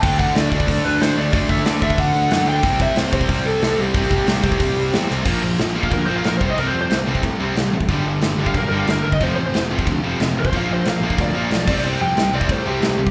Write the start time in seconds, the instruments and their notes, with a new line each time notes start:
0.02 picked electric bass D2, overdriven electric guitar D3 A3 D4, lead electric guitar G5, kick, crash
0.19 lead electric guitar F#5, kick
0.35 picked electric bass D2, lead electric guitar D5, snare, open hi-hat
0.50 picked electric bass D2, distorted electric guitar A3 D4, lead electric guitar D5, kick
0.55 distorted electric guitar D3
0.60 kick
0.68 picked electric bass D2, kick, open hi-hat
0.85 picked electric bass D2, lead electric guitar B4
1.01 picked electric bass D2, lead electric guitar C5, snare, open hi-hat
1.17 picked electric bass D2, overdriven electric guitar D3 A3 D4, lead electric guitar D5
1.33 picked electric bass D2, overdriven electric guitar D3 A3 D4, lead electric guitar D5, kick, open hi-hat
1.49 picked electric bass D2, lead electric guitar E5, kick
1.65 picked electric bass D2, lead electric guitar D5, snare, open hi-hat
1.82 picked electric bass D2, distorted electric guitar D3 A3 D4, lead electric guitar E5, kick
1.90 kick
1.98 picked electric bass D2, lead electric guitar F#5, kick, open hi-hat
2.15 picked electric bass D2
2.31 picked electric bass F#2, lead electric guitar F#5, snare, open hi-hat
2.46 picked electric bass D2, overdriven electric guitar D3 A3 D4, lead electric guitar G5
2.63 picked electric bass C2, overdriven electric guitar C3 G3 C4, kick, open hi-hat
2.80 lead electric guitar E5, kick
2.96 picked electric bass C2, lead electric guitar C5, snare, open hi-hat
3.12 picked electric bass C2, distorted electric guitar C3 G3 C4, lead electric guitar C5, kick
3.21 kick
3.29 picked electric bass C2, kick, open hi-hat
3.45 picked electric bass C2, lead electric guitar A4
3.62 picked electric bass C2, lead electric guitar A4, snare, open hi-hat
3.78 picked electric bass C2, overdriven electric guitar C3 G3 C4, lead electric guitar G4
3.94 picked electric bass C2, overdriven electric guitar C3 G3 C4, kick, open hi-hat
4.11 picked electric bass C2, kick
4.27 picked electric bass C2, snare, open hi-hat
4.43 picked electric bass C2, distorted electric guitar C3 G3 C4, kick
4.52 kick
4.60 picked electric bass C2, kick, open hi-hat
4.77 picked electric bass C2
4.93 picked electric bass E2, snare, open hi-hat
5.09 picked electric bass C2, overdriven electric guitar C3 G3 C4, snare
5.25 picked electric bass A#1, overdriven electric guitar A#2 F3 A#3, kick, crash
5.42 picked electric bass A#1, overdriven electric guitar A#2 F3
5.58 picked electric bass A#1, overdriven electric guitar A#2 F3, snare, crash
5.75 picked electric bass A#1, overdriven electric guitar A#2 F3 A#3
5.83 lead electric guitar F5, kick
5.91 picked electric bass D2, overdriven electric guitar A#2 F3, distorted electric guitar A#3, lead electric guitar A#4, kick, crash
6.07 picked electric bass A#1, overdriven electric guitar A#2 F3 A#3, lead electric guitar C5
6.16 lead electric guitar F5
6.24 picked electric bass A#1, overdriven electric guitar A#2 F3, lead electric guitar A#4, snare, crash
6.37 picked electric bass C2, overdriven electric guitar C3, lead electric guitar C5, kick
6.42 overdriven electric guitar G3 C4
6.50 lead electric guitar D#5
6.58 picked electric bass C2, overdriven electric guitar C3 G3 C4, lead electric guitar A#4, crash
6.68 lead electric guitar C5
6.74 picked electric bass F2, overdriven electric guitar C3 G3
6.82 lead electric guitar C5
6.90 picked electric bass C2, overdriven electric guitar C3 G3, snare, crash
7.07 picked electric bass C2, overdriven electric guitar C3 G3 C4
7.15 kick
7.23 picked electric bass A2, overdriven electric guitar C3 G3, kick, crash
7.40 picked electric bass C2, overdriven electric guitar C3 G3 C4
7.56 picked electric bass C2, overdriven electric guitar C3 G3, snare, crash
7.72 picked electric bass A1, overdriven electric guitar C3 G3
7.81 kick
7.88 picked electric bass G1, overdriven electric guitar G2 D3 G3, kick, crash
8.05 picked electric bass G1, overdriven electric guitar G2 D3
8.21 picked electric bass G1, overdriven electric guitar G2 D3, snare, crash
8.37 picked electric bass G1, overdriven electric guitar G2 D3 G3
8.46 lead electric guitar F5, kick
8.54 picked electric bass B1, overdriven electric guitar G2 D3, distorted electric guitar G3, lead electric guitar A#4, kick, crash
8.69 picked electric bass G1, overdriven electric guitar G2 D3 G3, lead electric guitar A#4
8.79 lead electric guitar F5
8.87 picked electric bass G1, overdriven electric guitar G2 D3, snare, crash
8.91 lead electric guitar A#4
9.03 picked electric bass G1, overdriven electric guitar G2 D3, lead electric guitar A#4
9.12 lead electric guitar D#5, kick
9.20 picked electric bass F1, overdriven electric guitar F2 C3 F3, lead electric guitar C5, kick, crash
9.36 picked electric bass A1, overdriven electric guitar F2 C3, lead electric guitar C5
9.46 lead electric guitar C5
9.54 picked electric bass F1, overdriven electric guitar F2 C3, snare, crash
9.71 picked electric bass F1, overdriven electric guitar F2 C3 F3
9.79 kick
9.87 picked electric bass D2, overdriven electric guitar F2 C3, distorted electric guitar F3, kick, crash
10.04 picked electric bass F1, overdriven electric guitar F2 C3 F3
10.20 picked electric bass F1, overdriven electric guitar F2 C3, snare, crash
10.36 picked electric bass A1, overdriven electric guitar F2 C3
10.40 lead electric guitar C5
10.45 kick
10.53 picked electric bass A#1, overdriven electric guitar A#2 F3 A#3, kick, crash
10.57 lead electric guitar F5
10.69 picked electric bass A#1, overdriven electric guitar A#2 F3, lead electric guitar C5
10.85 picked electric bass A#1, overdriven electric guitar A#2 F3, snare, crash
10.90 lead electric guitar F5
11.01 picked electric bass A#1, overdriven electric guitar A#2 F3 A#3
11.10 kick
11.18 picked electric bass D2, overdriven electric guitar A#2 F3, distorted electric guitar A#3, lead electric guitar D5, kick, crash
11.34 picked electric bass A#1, overdriven electric guitar A#2 F3 A#3
11.51 picked electric bass B1, overdriven electric guitar A#2 F3, snare, crash
11.67 picked electric bass C2, overdriven electric guitar C3 G3 C4, kick, crash
11.83 picked electric bass C2, overdriven electric guitar C3 G3 C4, crash
12.00 picked electric bass F2, overdriven electric guitar C3 G3, lead electric guitar G5
12.16 picked electric bass C2, overdriven electric guitar C3 G3, snare, crash
12.32 picked electric bass C2, overdriven electric guitar C3 G3 C4, lead electric guitar D5
12.41 kick
12.49 picked electric bass A2, overdriven electric guitar C3 G3, lead electric guitar C5, kick, crash
12.66 picked electric bass C2, overdriven electric guitar C3 G3 C4, lead electric guitar G4
12.81 picked electric bass C2, overdriven electric guitar C3 G3, snare, crash
12.98 picked electric bass C2, overdriven electric guitar C3 G3
13.07 kick